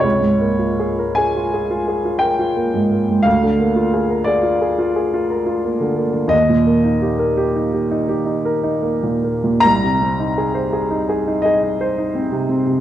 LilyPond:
\new Staff \with { instrumentName = "Grand piano" } { \time 9/8 \key bes \dorian \tempo 4. = 57 << { des''4. aes''4. g''4. | f''4. d''2~ d''8 r8 | ees''1~ ees''8 | bes''2~ bes''8 ees''2 | } \\ { des,16 aes,16 bes16 f'16 aes'16 bes'16 aes'16 f'16 aes'16 f'16 aes'16 f'16 bes'16 f'16 bes16 aes,16 bes16 aes,16 | d,16 d16 bes16 f'16 aes'16 bes'16 aes'16 f'16 aes'16 f'16 aes'16 f'16 bes'16 f'16 bes16 d16 bes16 d16 | ees,16 bes,16 bes16 ees'16 g'16 bes'16 g'16 ees'16 g'16 ees'16 g'16 ees'16 bes'16 ees'16 bes16 bes,16 bes16 bes,16 | c,16 c16 c'16 ees'16 aes'16 c''16 aes'16 ees'16 aes'16 ees'16 aes'16 ees'16 c''16 ees'16 c'16 c16 c'16 c16 | } >> }